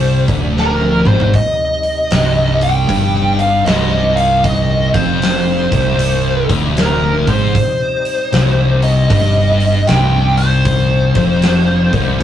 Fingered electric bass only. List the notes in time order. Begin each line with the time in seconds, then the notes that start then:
Already playing: C1
0.28 D1
1.06 G#1
2.11 C1
2.88 G1
3.66 C1
4.94 F1
5.72 C1
6.49 D1
7.27 G#1
8.33 C1
9.10 G1
9.88 C1
11.15 F1
11.93 C1